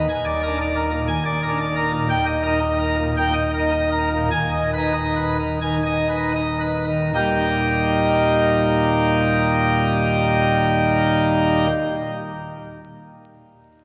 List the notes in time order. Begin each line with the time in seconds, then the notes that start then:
0.09 D#1 D#2 G#5
0.26 D5
0.43 D4 A#4
0.60 D5
0.76 A#4
0.92 A#2
1.08 D#1 D#2 G#5
1.25 D5
1.43 A#4
1.49 D4
1.60 D5
1.76 A#4
1.92 A#2
2.09 D#1 D#2 G5
2.26 D#5
2.43 D#4 A#4
2.60 D#5
2.79 A#4
2.98 A#2
3.17 A#2 G5
3.33 D#5
3.54 A#4
3.59 D#4
3.72 D#5
3.92 A#4
4.12 A#2
4.31 D#1 D#2 G#5
4.52 D#5
4.74 B4
4.78 D#4
4.94 D#5
5.17 B4
5.39 D#3
5.62 D#3 G#5
5.86 D#5
6.10 B4
6.17 D#4
6.36 D#5
6.60 B4
6.87 D#3
7.14 D#1 D#2 A#2 G3 A#3 D#4 G4